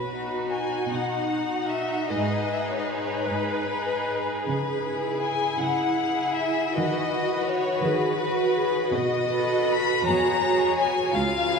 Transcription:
Already playing: B2 F#4 B4
0.13 D#4 F#4
0.52 G#5
0.90 B2 D#4 F#5
1.30 D#4 F#4
1.70 E5
2.09 G#2 D#4 G#4 B4 D#5
2.52 D#4 G#4 E5
2.62 D#5
2.70 C#5
2.80 D#5
2.88 C#5
3.26 G#2 B4
3.70 D#4 G#4
4.45 C#3 G#4 B4
4.86 E4 G#4
5.23 G#5
5.61 C#3 E4 F#5
6.00 E4 G#4
6.35 E5
6.73 D#3 F#4 B4 D#5
7.11 F#4 B4
7.47 C#5
7.82 D#3 G#4 B4
8.19 F#4 B4
8.57 G#4
8.93 B2 F#4 D#5
9.29 A4 B4
9.68 B5
10.04 E2 G#4 C#5 A#5
10.40 G#4 C#5
10.77 G#5
11.14 C#2 F4 F5
11.48 G#4 B4

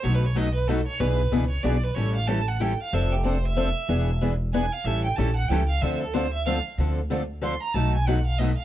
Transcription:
0.04 B1 B2 F#3 A3 D#4 F#4 B4 C#5
0.15 B4
0.26 C#5
0.35 B2 F#3 A3 D#4 F#4 B4 D#5
0.55 B4
0.68 B2 F#3 A3 D#4 F#4 A4 B4
0.87 C#5
1.00 B1 B2 E3 B3 D4 G#4 B4
1.32 C#2 B2 E3 B3 D4 G#4 B4
1.49 C#5
1.63 B1 B2 E3 B3 D4 G#4 B4 D5
1.84 B4
1.95 A1 E3 G3 C#4 E4 A4 C#5
2.15 F5
2.28 E3 G3 C#4 E4 A4 A5
2.48 F#5
2.60 E3 G3 C#4 E4 A4 G5
2.82 F5
2.93 F1 F3 C4 D4 A4 E5
3.12 G4
3.23 F3 C4 D4 A4 C5
3.46 E5
3.56 F3 C4 D4 A4
3.88 E1 E3 B3 D4 G#4 B4
4.22 E3 B3 D4 G#4 B4
4.53 E3 B3 D4 G#4 B4 G#5
4.73 F5
4.84 A1 E3 G3 C#4 E4 A4 E5
5.04 G5
5.16 A#1 E3 G3 C#4 E4 A4 A5
5.36 F#5
5.48 C#2 E3 G3 C#4 E4 A4 G5
5.69 F5
5.81 D2 D3 F3 A3 C4 D4 F4 A4 E5
6.02 A4
6.14 D3 F3 A3 C4 D4 F4 A4 C5
6.33 E5
6.46 D3 F3 A3 C4 D4 F4 A4 F5
6.78 D2 D3 F3 A3 C4 D4 F4 A4
7.10 D3 F3 A3 C4 D4 F4 A4
7.41 D3 F3 A3 C4 D4 F4 A4 C6
7.62 A#5
7.74 B1 B2 F#3 A3 D#4 F#4 B4 A5
7.95 G#5
8.08 B2 F#3 A3 D#4 F#4 B4 F#5
8.26 F5
8.39 B2 F#3 A3 D#4 F#4 B4 D#5
8.58 F5

